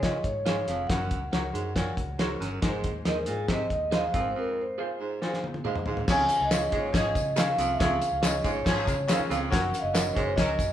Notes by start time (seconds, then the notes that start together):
Already playing: C#3
0.02 A#2 F4 G#4 C#5 D#5, kick, snare, closed hi-hat
0.24 G#2 C#5, kick, closed hi-hat
0.45 G#2 F4 G#4 C#5, snare, closed hi-hat
0.67 F1 F2 F5, snare, closed hi-hat
0.87 F#1 F#2 F#4 A#4 C#5 F#5, kick, snare, closed hi-hat
1.11 C#2, kick, closed hi-hat
1.31 C#2 F#4 G#4 A#4 C#5 F#5, snare, closed hi-hat
1.38 A#4
1.53 F#2 G#2, closed hi-hat
1.75 A#2 F#4 A#4 C#5, kick, snare, closed hi-hat
1.97 C#2, kick, closed hi-hat
2.18 G#2 F#4 A#4 C#5, snare, closed hi-hat
2.40 G1 F#2, snare, closed hi-hat
2.61 G#1 G#2 D#4 G#4 A#4, kick, snare, closed hi-hat
2.69 C5
2.84 D#2, kick, closed hi-hat
3.05 D#2 D#4 G#4 A#4 C5 D#5, snare, closed hi-hat
3.26 G#2 A#2 G#4, closed hi-hat
3.48 C3 D#4 G#4 C5, kick, snare, closed hi-hat
3.52 D#5
3.70 D#2 D#5, kick, closed hi-hat
3.91 G#2 D#4 G#4 C5 D#5 F5, snare, closed hi-hat
4.13 G#1 F2 G#2 F4 G#4 A#4, kick, snare, closed hi-hat
4.19 C5
4.31 F2 C5
4.39 A#4
4.61 C5
4.78 F4 G#4 C5 F5
4.99 G#2
5.21 A#2 F4 F#4 C5, snare
5.28 G#4
5.34 snare
5.44 high tom
5.54 high tom
5.65 G#2 G#4 C5 D#5 F5, mid tom
5.75 mid tom
5.86 G#2 F5, floor tom
5.97 floor tom
6.07 C#2 F2 C#3 C#4 F4 G#4 C#5, kick, snare, crash, tambourine
6.12 G#5
6.29 closed hi-hat, tambourine
6.41 C#2
6.45 D#5
6.51 C#4 F4 G#4 C#5 F5, snare, clap, closed hi-hat, tambourine
6.72 A#1 G#2 C#4 F4 G#4 C#5, kick, closed hi-hat
6.76 C#5
6.93 G#1 F3 C#4 F4 G#4 C#5 D#5, kick, snare, closed hi-hat, tambourine
7.15 C#3, kick, closed hi-hat, tambourine
7.36 D#2 C#4 F4 G#4 C#5 F5, snare, clap, closed hi-hat, tambourine
7.58 C2 F2, snare, closed hi-hat, tambourine
7.74 E5
7.79 C#2 F2 C#3 C#4 F4 G#4 C#5 F5, kick, snare, closed hi-hat
8.02 closed hi-hat, tambourine
8.12 C#2
8.22 C#4 F4 G#4 C#5 D#5 F5, snare, clap, closed hi-hat, tambourine
8.44 A#1 G#2 C#4 F4 G#4 C#5, kick, closed hi-hat, tambourine
8.65 G#1 F3 C#4 F4 G#4 C#5, kick, snare, closed hi-hat, tambourine
8.88 C#3, kick, closed hi-hat, tambourine
9.08 D#2 C#4 F4 G#4 C5 C#5 F5, snare, clap, closed hi-hat, tambourine
9.15 C#5
9.19 muted fingered electric bass stroke
9.30 C#2 F2 G#4 C#5 F5, snare, closed hi-hat, tambourine
9.50 F#1 F#2 C#4 F#4 A#4 C#5 F#5, kick, snare, closed hi-hat, tambourine
9.74 closed hi-hat, tambourine
9.78 D#5 F5
9.83 F#1
9.94 C#4 F#4 A#4 C#5 D#5 F#5, snare, clap, closed hi-hat, tambourine
10.13 F#1 G#2 C#4 F#4 A#4 C5 C#5, kick, closed hi-hat
10.36 C#2 F#3 C#4 F#4 A#4 C#5 D#5, kick, snare, closed hi-hat, tambourine
10.58 F#2, kick, closed hi-hat, tambourine